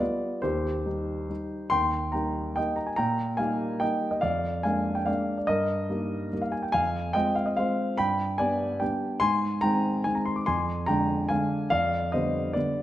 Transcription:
0.00 0.40 G3 soft
0.00 0.40 B3 soft
0.00 0.40 F4 soft
0.00 0.41 B4 soft
0.00 0.43 D5 medium
0.42 0.85 D#2 medium
0.42 1.68 G4 medium
0.42 1.71 C5 medium
0.86 1.26 G3 soft
0.86 1.26 D#4 soft
1.29 1.68 G3 soft
1.29 1.68 D#4 soft
1.70 2.13 D#2 soft
1.70 2.11 G5 medium
1.70 2.13 C6 medium
2.12 2.53 G3 soft
2.12 2.53 A#3 soft
2.12 2.53 D#4 soft
2.12 2.54 G5 soft
2.12 2.56 A#5 medium
2.56 2.94 G3 soft
2.56 2.95 A#3 soft
2.56 2.95 D#4 soft
2.56 2.76 D#5 soft
2.56 2.77 G5 medium
2.76 2.87 A#5 medium
2.87 2.97 G#5 medium
2.96 3.38 A#2 soft
2.96 3.37 G5 medium
2.96 3.39 A#5 medium
3.37 3.78 G3 soft
3.37 3.78 A#3 soft
3.37 3.78 D#4 soft
3.37 3.78 F5 medium
3.37 3.81 G#5 medium
3.80 4.19 G3 soft
3.80 4.19 A#3 soft
3.80 4.19 D#4 soft
3.80 4.09 D#5 soft
3.80 4.12 G5 medium
4.11 4.22 D#5 soft
4.21 4.64 F2 medium
4.21 4.62 D5 medium
4.21 4.63 F5 medium
4.63 5.04 G#3 soft
4.63 5.04 A#3 soft
4.63 5.05 D4 soft
4.63 4.95 F5 medium
4.63 4.96 G#5 medium
4.95 5.07 G5 medium
5.06 5.45 G#3 soft
5.06 5.45 A#3 soft
5.06 5.45 D4 soft
5.06 5.36 D5 soft
5.06 5.38 F5 medium
5.38 5.48 D5 soft
5.47 5.88 G2 medium
5.47 6.39 A#4 medium
5.47 6.42 D#5 medium
5.90 6.28 G3 soft
5.90 6.28 A#3 soft
5.90 6.29 D#4 soft
6.33 6.70 G3 soft
6.33 6.71 A#3 soft
6.33 6.71 D#4 soft
6.42 6.53 F5 medium
6.52 6.63 G#5 medium
6.62 6.73 G5 soft
6.72 7.14 F2 soft
6.72 7.12 F5 medium
6.72 7.14 G#5 medium
7.13 7.54 G#3 soft
7.13 7.54 C4 soft
7.13 7.54 F4 soft
7.13 7.35 D#5 medium
7.13 7.35 G5 medium
7.35 7.46 F5 medium
7.46 7.57 D#5 medium
7.57 7.95 G#3 soft
7.57 7.95 C4 soft
7.57 7.95 F4 soft
7.57 7.96 C5 soft
7.57 7.98 F5 medium
7.98 8.38 G2 medium
7.98 8.36 G5 medium
7.98 8.38 B5 medium
8.38 8.77 G3 soft
8.38 8.78 B3 soft
8.38 8.78 D4 soft
8.38 8.78 D5 medium
8.38 8.81 G#5 medium
8.80 9.18 G3 soft
8.80 9.18 B3 soft
8.80 9.18 D4 soft
8.80 9.19 D5 soft
8.80 9.21 G5 medium
9.20 9.62 G#2 soft
9.20 9.60 G#5 medium
9.20 9.62 C6 loud
9.61 10.02 D#3 soft
9.61 10.02 G#3 soft
9.61 10.02 C4 soft
9.61 10.03 G5 medium
9.61 10.05 A#5 medium
10.04 10.44 D#3 soft
10.04 10.44 G#3 soft
10.04 10.44 C4 soft
10.04 10.16 G#5 medium
10.15 10.26 A#5 medium
10.25 10.37 C6 medium
10.36 10.47 D6 medium
10.46 10.87 F2 medium
10.46 10.85 G#5 medium
10.46 10.88 C6 medium
10.86 11.26 D3 soft
10.86 11.27 G#3 soft
10.86 11.27 D4 soft
10.86 11.27 G5 medium
10.86 11.30 A#5 medium
11.29 11.68 D3 soft
11.29 11.68 G#3 soft
11.29 11.68 D4 soft
11.29 11.69 F5 medium
11.29 11.71 G#5 medium
11.70 12.12 F2 medium
11.70 12.10 D5 medium
11.70 12.13 F5 medium
12.12 12.52 D3 soft
12.12 12.52 G3 soft
12.12 12.52 B3 soft
12.12 12.52 C5 medium
12.12 12.55 D#5 medium
12.53 12.82 D3 soft
12.53 12.82 G3 soft
12.53 12.82 B3 soft
12.53 12.82 B4 soft
12.53 12.82 D5 medium

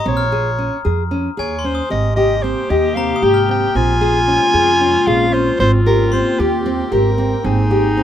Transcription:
0.00 0.29 A#5 medium
0.00 0.29 C6 medium
0.00 0.45 D#6 soft
0.05 0.68 A#1 medium
0.05 0.23 C4 medium
0.05 0.82 C#5 medium
0.17 0.61 F6 medium
0.32 0.50 G#4 medium
0.58 0.76 C#4 medium
0.85 1.27 F2 medium
0.85 1.02 G#4 medium
1.11 1.29 C#4 medium
1.37 1.79 D#2 medium
1.37 1.55 G#4 medium
1.37 1.67 C#5 medium
1.37 2.14 G#5 soft
1.59 2.30 C6 soft
1.64 1.82 C#4 medium
1.64 1.90 C5 medium
1.75 2.45 D#6 soft
1.90 2.53 G#1 medium
1.90 3.73 C3 medium
1.90 3.73 A#3 medium
1.90 2.08 C4 medium
1.90 3.78 G4 loud
1.90 3.73 G4 medium
1.90 2.15 D#5 medium
2.16 2.34 G4 medium
2.16 2.44 D#5 medium
2.43 2.61 C4 medium
2.43 2.71 C5 medium
2.70 3.11 D#2 medium
2.70 2.87 G4 medium
2.70 2.96 D#5 medium
2.95 3.13 C4 medium
2.95 3.24 F5 medium
2.95 3.98 A#5 medium
3.16 4.14 D#6 soft
3.22 3.63 G#1 medium
3.22 3.40 G4 medium
3.22 3.49 G5 medium
3.34 4.30 F6 soft
3.49 3.66 C4 medium
3.49 3.77 G5 medium
3.75 4.37 A#1 medium
3.75 5.58 G#3 medium
3.75 3.93 C4 medium
3.75 8.03 C4 medium
3.75 5.58 C#4 medium
3.75 5.60 F4 loud
3.75 5.08 G#5 loud
4.01 4.19 G#4 medium
4.28 4.45 C#4 medium
4.54 4.95 F2 medium
4.54 4.71 G#4 medium
4.81 4.98 C#4 medium
5.07 5.48 A#1 medium
5.07 5.25 G#4 medium
5.07 5.35 F5 medium
5.33 5.51 C#4 medium
5.33 5.59 C5 medium
5.59 6.21 G#1 medium
5.59 8.03 A#3 medium
5.59 5.77 C4 medium
5.59 7.14 F4 medium
5.59 5.72 C5 medium
5.59 8.03 G5 medium
5.86 6.04 G4 medium
5.86 6.15 A#4 medium
6.12 6.30 C4 medium
6.12 6.41 C5 medium
6.12 7.66 C6 soft
6.39 6.80 D#2 medium
6.39 6.57 G4 medium
6.39 6.93 G4 medium
6.66 6.83 C4 medium
6.92 7.33 G#1 medium
6.92 7.09 G4 medium
6.92 7.44 A#4 medium
7.18 7.35 C4 medium
7.44 8.03 G#1 medium
7.44 7.62 C4 medium
7.44 8.03 D#4 loud
7.44 8.03 G#4 medium
7.71 7.88 G4 medium
7.97 8.03 C4 medium

